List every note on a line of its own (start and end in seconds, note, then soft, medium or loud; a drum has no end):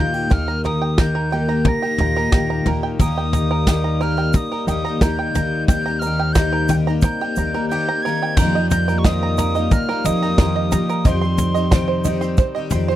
0.00 0.29 D#2 medium
0.00 0.32 A#2 soft
0.00 0.29 D#3 soft
0.00 0.29 D#3 medium
0.00 0.30 A#3 medium
0.00 1.32 A#3 medium
0.00 0.30 D#4 medium
0.00 1.15 D#4 soft
0.00 0.14 F4 medium
0.00 0.31 G4 medium
0.00 0.31 A#4 medium
0.00 0.29 G5 medium
0.00 0.47 A#5 medium
0.00 0.34 G6 medium
0.14 0.31 G4 soft
0.30 1.62 D#2 medium
0.30 5.69 D#3 medium
0.30 0.48 D#3 medium
0.30 0.48 A#3 medium
0.30 0.47 D#4 medium
0.30 0.46 G4 medium
0.30 0.80 G5 medium
0.30 0.65 F6 loud
0.30 kick loud
0.30 floor tom medium
0.48 0.63 A#3 soft
0.48 0.64 D#4 soft
0.48 0.65 G4 soft
0.48 0.98 A#5 medium
0.64 0.97 D#3 medium
0.64 0.98 A#3 medium
0.64 0.98 D#4 medium
0.64 1.32 G4 medium
0.64 0.98 G4 medium
0.64 1.14 A#4 medium
0.64 1.01 D#6 medium
0.64 floor tom medium
0.82 1.31 G5 medium
0.98 1.29 D#3 medium
0.98 1.31 A#3 medium
0.98 1.32 D#4 medium
0.98 1.32 G4 medium
0.98 1.48 A#5 medium
0.98 1.70 G6 medium
0.98 kick loud
0.98 snare medium
1.15 1.65 A#4 medium
1.31 1.48 D#3 soft
1.31 1.49 A#3 medium
1.31 2.97 A#3 medium
1.31 1.48 D#4 medium
1.31 1.66 G4 medium
1.31 1.47 G4 medium
1.31 1.81 G5 medium
1.48 1.84 A#3 soft
1.48 1.83 D#4 soft
1.48 1.82 G4 soft
1.48 1.99 A#5 medium
1.65 2.32 G4 medium
1.65 2.15 A#4 medium
1.65 2.68 A#6 medium
1.65 kick medium
1.65 floor tom loud
1.82 1.99 A#3 soft
1.82 1.99 D#4 soft
1.82 2.00 G4 soft
1.82 2.32 G5 medium
1.98 2.31 D#2 medium
1.98 3.00 A#2 medium
1.98 2.16 D#3 medium
1.98 2.17 A#3 medium
1.98 2.17 D#4 medium
1.98 2.15 G4 medium
1.98 2.49 A#5 medium
1.98 floor tom medium
2.16 2.32 A#3 soft
2.16 2.33 D#4 soft
2.16 2.33 G4 medium
2.16 2.65 A#4 medium
2.32 2.64 D#2 medium
2.32 2.65 D#3 medium
2.32 2.66 A#3 medium
2.32 2.66 D#4 medium
2.32 2.67 G4 medium
2.32 2.82 G5 medium
2.32 kick loud
2.32 snare medium
2.50 3.17 A#5 medium
2.66 2.98 D#2 medium
2.66 2.99 D#3 medium
2.66 2.99 A#3 medium
2.66 3.00 D#4 medium
2.66 3.01 G4 medium
2.66 2.98 G4 medium
2.66 2.99 A#4 medium
2.66 floor tom medium
2.83 3.16 G5 medium
2.99 4.31 D#2 medium
2.99 3.17 D#3 medium
2.99 8.33 G3 medium
2.99 5.66 A#3 medium
2.99 3.17 A#3 medium
2.99 8.33 D#4 medium
2.99 3.17 D#4 medium
2.99 3.15 G4 medium
2.99 3.50 A#4 medium
2.99 4.04 D#6 medium
2.99 kick loud
2.99 floor tom loud
2.99 shaker medium
3.16 3.34 A#3 soft
3.16 3.35 D#4 soft
3.16 3.34 G4 soft
3.16 3.66 G5 medium
3.33 3.66 D#3 soft
3.33 3.67 A#3 medium
3.33 3.68 D#4 medium
3.33 3.68 G4 medium
3.33 3.83 A#5 medium
3.33 floor tom medium
3.33 shaker medium
3.51 3.99 A#4 medium
3.67 3.99 D#3 medium
3.67 4.00 A#3 medium
3.67 4.01 D#4 medium
3.67 4.02 G4 medium
3.67 4.17 G5 medium
3.67 kick medium
3.67 snare loud
3.67 shaker medium
3.84 4.33 A#5 medium
4.01 4.18 D#3 medium
4.01 4.18 A#3 medium
4.01 4.18 D#4 medium
4.01 4.16 G4 medium
4.01 4.50 A#4 medium
4.01 4.38 F6 medium
4.17 4.53 A#3 soft
4.17 4.52 D#4 soft
4.17 4.51 G4 soft
4.17 4.67 G5 medium
4.33 4.83 A#5 medium
4.33 4.68 D#6 medium
4.33 kick medium
4.33 floor tom loud
4.33 shaker medium
4.52 4.69 A#3 soft
4.52 4.69 D#4 soft
4.52 4.69 G4 soft
4.52 5.00 A#4 medium
4.67 4.99 D#2 medium
4.67 4.86 D#3 medium
4.67 4.86 A#3 medium
4.67 5.17 G5 medium
4.67 5.03 D#6 medium
4.67 floor tom medium
4.67 shaker medium
4.71 4.87 D#4 medium
4.71 4.85 G4 medium
4.85 5.04 D#4 soft
4.85 5.03 G4 medium
4.85 5.34 A#5 medium
4.89 5.03 A#3 soft
5.01 5.33 D#2 medium
5.01 5.36 D#3 medium
5.01 5.37 A#3 medium
5.01 5.37 D#4 medium
5.01 5.37 G4 medium
5.01 5.69 A#4 medium
5.01 5.67 G6 medium
5.01 kick loud
5.01 snare loud
5.01 shaker medium
5.19 5.67 G5 medium
5.34 5.66 D#2 medium
5.34 5.68 D#3 medium
5.34 5.84 A#5 medium
5.34 floor tom medium
5.34 shaker medium
5.38 5.69 A#3 medium
5.38 5.70 D#4 medium
5.38 5.70 G4 medium
5.68 6.99 D#2 medium
5.68 5.86 D#3 medium
5.68 5.87 A#3 medium
5.68 8.35 C4 medium
5.68 5.87 D#4 medium
5.68 5.86 G4 medium
5.68 6.18 G5 medium
5.68 6.01 G6 loud
5.68 kick loud
5.68 floor tom loud
5.68 shaker medium
5.86 6.04 D#4 medium
5.86 6.04 G4 medium
5.86 6.35 A#5 medium
5.90 6.04 A#3 soft
5.99 6.51 A#4 medium
5.99 6.34 F6 loud
5.99 shaker medium
6.04 6.36 D#3 medium
6.04 6.37 A#3 medium
6.04 6.37 D#4 medium
6.04 6.37 G4 medium
6.19 6.69 G5 medium
6.33 6.69 D#3 medium
6.33 6.86 A#5 medium
6.33 6.76 G6 medium
6.33 kick medium
6.33 snare loud
6.33 shaker medium
6.38 6.70 A#3 medium
6.38 6.71 D#4 medium
6.38 6.71 G4 medium
6.53 7.03 A#4 medium
6.68 6.87 D#3 medium
6.68 6.87 A#3 medium
6.68 7.20 G5 medium
6.68 floor tom medium
6.68 shaker medium
6.72 6.88 D#4 medium
6.72 6.87 G4 medium
6.87 7.22 A#3 soft
6.87 7.21 D#4 soft
6.87 7.20 G4 medium
6.87 7.37 A#5 medium
7.02 7.53 A#4 medium
7.02 7.66 G6 medium
7.02 kick loud
7.02 floor tom loud
7.02 shaker medium
7.21 7.37 A#3 soft
7.21 7.37 D#4 soft
7.21 7.37 G4 medium
7.21 7.88 G5 medium
7.36 7.68 D#2 medium
7.36 7.54 D#3 medium
7.36 7.54 A#3 medium
7.36 7.55 D#4 medium
7.36 7.53 G4 medium
7.36 7.87 A#5 medium
7.36 shaker medium
7.54 7.70 A#3 soft
7.54 7.71 D#4 soft
7.54 7.71 G4 medium
7.54 8.04 A#4 medium
7.69 7.88 D#3 medium
7.69 7.88 A#3 medium
7.69 7.88 D#4 medium
7.69 8.38 G4 medium
7.69 7.87 G4 medium
7.69 8.04 G6 medium
7.88 8.06 A#3 soft
7.88 8.05 D#4 soft
7.88 8.05 G4 soft
7.88 8.38 A#5 medium
8.03 8.38 D#3 medium
8.03 8.37 A#4 medium
8.03 8.38 G#6 loud
8.07 8.39 A#3 medium
8.07 8.39 D#4 medium
8.07 8.40 G4 medium
8.22 8.38 G5 medium
8.37 9.67 F2 loud
8.37 8.55 F2 medium
8.37 8.56 D#3 medium
8.37 8.56 F3 medium
8.37 12.96 G3 medium
8.37 11.03 A#3 medium
8.37 12.96 D#4 medium
8.37 8.87 A#4 medium
8.37 8.70 G6 loud
8.37 kick loud
8.37 floor tom medium
8.37 crash medium
8.37 shaker medium
8.41 8.56 A#3 medium
8.41 8.56 D#4 medium
8.41 8.55 G4 medium
8.55 8.90 F3 soft
8.55 8.89 D#4 medium
8.55 8.89 G4 medium
8.55 9.03 D#5 medium
8.70 9.22 A#5 medium
8.70 9.00 G6 medium
8.70 floor tom medium
8.70 shaker medium
8.88 9.06 A#3 soft
8.88 9.06 D#4 soft
8.88 9.06 G4 medium
8.88 9.37 A#4 medium
8.88 shaker soft
8.92 9.07 F3 soft
8.98 9.06 C#6 medium
9.04 9.39 F2 medium
9.04 9.39 D#3 medium
9.04 9.38 F3 medium
9.04 9.39 A#3 medium
9.04 9.40 D#4 medium
9.04 9.40 G4 medium
9.04 9.54 D#5 medium
9.04 9.74 D#6 medium
9.04 kick loud
9.04 snare loud
9.04 floor tom medium
9.04 shaker medium
9.23 9.71 A#5 medium
9.38 9.55 F3 medium
9.38 9.56 A#3 medium
9.38 9.56 D#4 medium
9.38 9.55 G4 medium
9.38 9.87 A#4 medium
9.38 floor tom medium
9.38 shaker medium
9.55 9.90 F3 soft
9.55 9.90 A#3 soft
9.55 9.90 D#4 soft
9.55 9.88 G4 medium
9.55 10.04 D#5 medium
9.55 shaker soft
9.71 10.21 A#5 medium
9.71 10.07 F6 medium
9.71 kick loud
9.71 floor tom medium
9.71 shaker medium
9.89 10.05 F3 soft
9.89 10.06 A#3 soft
9.89 10.06 D#4 soft
9.89 10.05 G4 medium
9.89 10.37 A#4 medium
10.05 10.36 F2 medium
10.05 10.22 F3 medium
10.05 10.23 A#3 medium
10.05 10.22 D#4 medium
10.05 10.21 G4 medium
10.05 10.55 D#5 medium
10.05 11.09 D#6 medium
10.05 floor tom medium
10.05 shaker medium
10.22 10.39 F3 soft
10.22 10.39 A#3 soft
10.22 10.39 D#4 medium
10.22 10.39 G4 medium
10.22 10.71 A#5 medium
10.38 10.69 F2 loud
10.38 10.72 F2 medium
10.38 10.73 D#3 medium
10.38 10.71 F3 medium
10.38 10.72 A#3 medium
10.38 10.73 D#4 medium
10.38 10.73 G4 medium
10.38 10.88 A#4 medium
10.38 kick loud
10.38 snare loud
10.38 floor tom medium
10.38 shaker medium
10.56 11.04 D#5 medium
10.72 11.05 F3 medium
10.72 11.07 F3 medium
10.72 11.06 A#3 medium
10.72 11.05 D#4 medium
10.72 11.07 G4 medium
10.72 11.05 A#5 medium
10.72 floor tom medium
10.72 shaker loud
10.89 11.06 A#4 medium
10.89 shaker soft
11.05 12.35 F2 medium
11.05 11.22 F2 medium
11.05 11.22 C3 medium
11.05 11.22 D#3 medium
11.05 12.96 C4 medium
11.05 11.23 C4 medium
11.05 11.23 D#4 medium
11.05 11.21 G4 medium
11.05 11.53 D#5 medium
11.05 12.06 C6 medium
11.05 kick loud
11.05 floor tom medium
11.05 shaker medium
11.21 11.57 D#3 soft
11.21 11.56 C4 soft
11.21 11.55 D#4 soft
11.21 11.55 G4 soft
11.21 11.70 C6 medium
11.38 floor tom medium
11.38 shaker medium
11.54 11.72 C4 soft
11.54 11.72 D#4 soft
11.54 11.72 G4 soft
11.54 12.03 D#5 medium
11.54 shaker soft
11.59 11.71 D#3 soft
11.71 12.05 F2 medium
11.71 12.06 C3 medium
11.71 12.04 D#3 medium
11.71 12.05 C4 medium
11.71 12.06 D#4 medium
11.71 12.07 G4 medium
11.71 12.20 C6 medium
11.71 kick loud
11.71 snare loud
11.71 floor tom medium
11.71 shaker medium
11.88 12.37 C5 medium
12.04 12.22 D#3 medium
12.04 12.22 C4 medium
12.04 12.21 D#4 medium
12.04 12.20 G4 medium
12.04 12.53 D#5 medium
12.04 floor tom medium
12.04 shaker medium
12.21 12.56 D#3 soft
12.21 12.56 C4 soft
12.21 12.55 D#4 medium
12.21 12.55 G4 medium
12.21 12.71 C6 medium
12.21 shaker soft
12.37 12.87 C5 medium
12.37 kick loud
12.37 floor tom medium
12.37 shaker medium
12.55 12.72 D#3 soft
12.55 12.73 C4 soft
12.55 12.73 D#4 medium
12.55 12.72 G4 medium
12.55 12.96 D#5 medium
12.70 12.96 F2 medium
12.70 12.89 D#3 medium
12.70 12.90 C4 medium
12.70 12.96 C6 medium
12.70 floor tom medium
12.70 shaker medium
12.75 12.89 D#4 medium
12.75 12.89 G4 medium
12.88 12.96 C4 medium
12.88 12.96 D#4 soft
12.88 12.96 G4 soft
12.88 12.96 C5 medium
12.92 12.96 D#3 soft